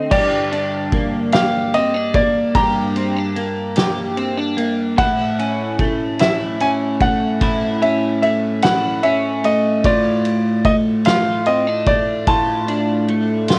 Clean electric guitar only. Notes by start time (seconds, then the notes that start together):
Already playing: D3 A3 C4
0.11 G2 G4
0.52 D4
0.93 A#3
1.33 G4
1.74 C4
1.94 D4
2.15 A#3
2.56 G2 G4
2.96 C4
3.17 D4
3.36 A#3
3.77 G4
4.17 C4
4.37 D4
4.57 A#3
4.97 A2 E4
5.39 C#4
5.80 A3
6.20 E4
6.60 C#4
7.01 A3
7.41 A2 E4
7.82 C#4
8.23 A3
8.63 E4
9.03 C#4
9.44 A3
9.85 A2 F4
10.66 A3
11.06 F4
11.47 C4
11.67 D4
11.87 A3
12.28 A2 F4
12.68 D4
13.09 A3
13.49 F4